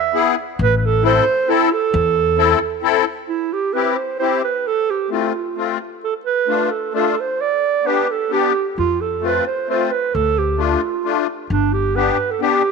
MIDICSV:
0, 0, Header, 1, 4, 480
1, 0, Start_track
1, 0, Key_signature, 0, "minor"
1, 0, Tempo, 447094
1, 633, Time_signature, 3, 2, 24, 8
1, 2555, Tempo, 455927
1, 3516, Key_signature, 0, "major"
1, 13438, End_track
2, 0, Start_track
2, 0, Title_t, "Clarinet"
2, 0, Program_c, 0, 71
2, 0, Note_on_c, 0, 76, 78
2, 365, Note_off_c, 0, 76, 0
2, 662, Note_on_c, 0, 71, 100
2, 821, Note_off_c, 0, 71, 0
2, 831, Note_on_c, 0, 71, 52
2, 919, Note_on_c, 0, 69, 88
2, 935, Note_off_c, 0, 71, 0
2, 1126, Note_off_c, 0, 69, 0
2, 1133, Note_on_c, 0, 72, 97
2, 1608, Note_on_c, 0, 64, 85
2, 1625, Note_off_c, 0, 72, 0
2, 1861, Note_on_c, 0, 69, 86
2, 1877, Note_off_c, 0, 64, 0
2, 3044, Note_off_c, 0, 69, 0
2, 3510, Note_on_c, 0, 64, 76
2, 3768, Note_on_c, 0, 67, 66
2, 3783, Note_off_c, 0, 64, 0
2, 3979, Note_on_c, 0, 71, 72
2, 3995, Note_off_c, 0, 67, 0
2, 4222, Note_on_c, 0, 72, 60
2, 4238, Note_off_c, 0, 71, 0
2, 4459, Note_off_c, 0, 72, 0
2, 4466, Note_on_c, 0, 72, 83
2, 4700, Note_off_c, 0, 72, 0
2, 4729, Note_on_c, 0, 71, 72
2, 4969, Note_on_c, 0, 69, 88
2, 4985, Note_off_c, 0, 71, 0
2, 5213, Note_on_c, 0, 67, 72
2, 5229, Note_off_c, 0, 69, 0
2, 5433, Note_off_c, 0, 67, 0
2, 5439, Note_on_c, 0, 65, 53
2, 6122, Note_off_c, 0, 65, 0
2, 6411, Note_on_c, 0, 69, 76
2, 6519, Note_off_c, 0, 69, 0
2, 6635, Note_on_c, 0, 71, 82
2, 7110, Note_on_c, 0, 69, 60
2, 7125, Note_off_c, 0, 71, 0
2, 7351, Note_off_c, 0, 69, 0
2, 7369, Note_on_c, 0, 69, 76
2, 7635, Note_on_c, 0, 72, 73
2, 7651, Note_off_c, 0, 69, 0
2, 7852, Note_on_c, 0, 74, 92
2, 7868, Note_off_c, 0, 72, 0
2, 8333, Note_on_c, 0, 71, 73
2, 8349, Note_off_c, 0, 74, 0
2, 8591, Note_on_c, 0, 69, 64
2, 8606, Note_off_c, 0, 71, 0
2, 8816, Note_off_c, 0, 69, 0
2, 8825, Note_on_c, 0, 67, 77
2, 9159, Note_off_c, 0, 67, 0
2, 9304, Note_on_c, 0, 65, 90
2, 9535, Note_on_c, 0, 69, 66
2, 9551, Note_off_c, 0, 65, 0
2, 9797, Note_on_c, 0, 71, 74
2, 9813, Note_off_c, 0, 69, 0
2, 10011, Note_off_c, 0, 71, 0
2, 10017, Note_on_c, 0, 72, 60
2, 10238, Note_off_c, 0, 72, 0
2, 10269, Note_on_c, 0, 72, 69
2, 10485, Note_on_c, 0, 71, 67
2, 10501, Note_off_c, 0, 72, 0
2, 10732, Note_on_c, 0, 69, 86
2, 10748, Note_off_c, 0, 71, 0
2, 10984, Note_on_c, 0, 67, 64
2, 11000, Note_off_c, 0, 69, 0
2, 11236, Note_on_c, 0, 65, 57
2, 11252, Note_off_c, 0, 67, 0
2, 11952, Note_off_c, 0, 65, 0
2, 12174, Note_on_c, 0, 62, 77
2, 12406, Note_on_c, 0, 67, 66
2, 12422, Note_off_c, 0, 62, 0
2, 12640, Note_on_c, 0, 71, 72
2, 12656, Note_off_c, 0, 67, 0
2, 13010, Note_on_c, 0, 69, 59
2, 13026, Note_off_c, 0, 71, 0
2, 13121, Note_off_c, 0, 69, 0
2, 13127, Note_on_c, 0, 67, 82
2, 13438, Note_off_c, 0, 67, 0
2, 13438, End_track
3, 0, Start_track
3, 0, Title_t, "Accordion"
3, 0, Program_c, 1, 21
3, 146, Note_on_c, 1, 59, 71
3, 152, Note_on_c, 1, 64, 57
3, 161, Note_on_c, 1, 68, 70
3, 372, Note_off_c, 1, 59, 0
3, 375, Note_off_c, 1, 64, 0
3, 380, Note_off_c, 1, 68, 0
3, 1105, Note_on_c, 1, 60, 55
3, 1110, Note_on_c, 1, 64, 62
3, 1125, Note_on_c, 1, 69, 76
3, 1332, Note_off_c, 1, 60, 0
3, 1334, Note_off_c, 1, 64, 0
3, 1341, Note_off_c, 1, 69, 0
3, 1585, Note_on_c, 1, 60, 65
3, 1593, Note_on_c, 1, 64, 57
3, 1602, Note_on_c, 1, 69, 76
3, 1812, Note_off_c, 1, 60, 0
3, 1815, Note_off_c, 1, 64, 0
3, 1820, Note_off_c, 1, 69, 0
3, 2545, Note_on_c, 1, 60, 73
3, 2554, Note_on_c, 1, 64, 64
3, 2560, Note_on_c, 1, 69, 85
3, 2771, Note_off_c, 1, 60, 0
3, 2776, Note_off_c, 1, 64, 0
3, 2779, Note_off_c, 1, 69, 0
3, 3023, Note_on_c, 1, 60, 71
3, 3033, Note_on_c, 1, 64, 65
3, 3041, Note_on_c, 1, 69, 85
3, 3252, Note_off_c, 1, 60, 0
3, 3257, Note_off_c, 1, 64, 0
3, 3261, Note_off_c, 1, 69, 0
3, 3996, Note_on_c, 1, 60, 49
3, 4000, Note_on_c, 1, 64, 51
3, 4012, Note_on_c, 1, 67, 58
3, 4219, Note_off_c, 1, 60, 0
3, 4222, Note_off_c, 1, 64, 0
3, 4228, Note_off_c, 1, 67, 0
3, 4471, Note_on_c, 1, 60, 52
3, 4480, Note_on_c, 1, 64, 51
3, 4493, Note_on_c, 1, 67, 57
3, 4696, Note_off_c, 1, 60, 0
3, 4700, Note_off_c, 1, 64, 0
3, 4707, Note_off_c, 1, 67, 0
3, 5421, Note_on_c, 1, 57, 51
3, 5426, Note_on_c, 1, 60, 48
3, 5443, Note_on_c, 1, 65, 55
3, 5650, Note_off_c, 1, 57, 0
3, 5653, Note_off_c, 1, 60, 0
3, 5661, Note_off_c, 1, 65, 0
3, 5906, Note_on_c, 1, 57, 52
3, 5912, Note_on_c, 1, 60, 43
3, 5919, Note_on_c, 1, 65, 56
3, 6133, Note_off_c, 1, 57, 0
3, 6136, Note_off_c, 1, 60, 0
3, 6140, Note_off_c, 1, 65, 0
3, 6866, Note_on_c, 1, 57, 56
3, 6877, Note_on_c, 1, 62, 50
3, 6884, Note_on_c, 1, 65, 50
3, 7095, Note_off_c, 1, 57, 0
3, 7100, Note_off_c, 1, 62, 0
3, 7104, Note_off_c, 1, 65, 0
3, 7352, Note_on_c, 1, 57, 58
3, 7353, Note_on_c, 1, 62, 52
3, 7365, Note_on_c, 1, 65, 64
3, 7579, Note_off_c, 1, 57, 0
3, 7580, Note_off_c, 1, 62, 0
3, 7586, Note_off_c, 1, 65, 0
3, 8303, Note_on_c, 1, 59, 58
3, 8323, Note_on_c, 1, 62, 49
3, 8331, Note_on_c, 1, 67, 58
3, 8537, Note_off_c, 1, 59, 0
3, 8547, Note_off_c, 1, 62, 0
3, 8551, Note_off_c, 1, 67, 0
3, 8787, Note_on_c, 1, 59, 61
3, 8796, Note_on_c, 1, 62, 54
3, 8804, Note_on_c, 1, 67, 66
3, 9022, Note_off_c, 1, 59, 0
3, 9027, Note_off_c, 1, 62, 0
3, 9031, Note_off_c, 1, 67, 0
3, 9747, Note_on_c, 1, 57, 48
3, 9762, Note_on_c, 1, 60, 55
3, 9775, Note_on_c, 1, 65, 50
3, 9986, Note_off_c, 1, 57, 0
3, 9994, Note_off_c, 1, 60, 0
3, 10000, Note_off_c, 1, 65, 0
3, 10234, Note_on_c, 1, 57, 57
3, 10243, Note_on_c, 1, 60, 48
3, 10256, Note_on_c, 1, 65, 58
3, 10470, Note_off_c, 1, 57, 0
3, 10475, Note_off_c, 1, 60, 0
3, 10481, Note_off_c, 1, 65, 0
3, 11181, Note_on_c, 1, 57, 52
3, 11191, Note_on_c, 1, 62, 50
3, 11203, Note_on_c, 1, 65, 60
3, 11424, Note_off_c, 1, 57, 0
3, 11429, Note_off_c, 1, 62, 0
3, 11435, Note_off_c, 1, 65, 0
3, 11676, Note_on_c, 1, 57, 59
3, 11685, Note_on_c, 1, 62, 48
3, 11686, Note_on_c, 1, 65, 59
3, 11909, Note_off_c, 1, 57, 0
3, 11913, Note_off_c, 1, 62, 0
3, 11914, Note_off_c, 1, 65, 0
3, 12633, Note_on_c, 1, 59, 61
3, 12646, Note_on_c, 1, 62, 51
3, 12648, Note_on_c, 1, 67, 63
3, 12860, Note_off_c, 1, 59, 0
3, 12866, Note_off_c, 1, 62, 0
3, 12867, Note_off_c, 1, 67, 0
3, 13109, Note_on_c, 1, 59, 59
3, 13118, Note_on_c, 1, 62, 58
3, 13122, Note_on_c, 1, 67, 69
3, 13336, Note_off_c, 1, 59, 0
3, 13340, Note_off_c, 1, 62, 0
3, 13342, Note_off_c, 1, 67, 0
3, 13438, End_track
4, 0, Start_track
4, 0, Title_t, "Upright bass"
4, 0, Program_c, 2, 32
4, 635, Note_on_c, 2, 33, 88
4, 1258, Note_off_c, 2, 33, 0
4, 2079, Note_on_c, 2, 40, 99
4, 2705, Note_off_c, 2, 40, 0
4, 9290, Note_on_c, 2, 41, 66
4, 9919, Note_off_c, 2, 41, 0
4, 10731, Note_on_c, 2, 38, 69
4, 11358, Note_off_c, 2, 38, 0
4, 12159, Note_on_c, 2, 31, 77
4, 12779, Note_off_c, 2, 31, 0
4, 13438, End_track
0, 0, End_of_file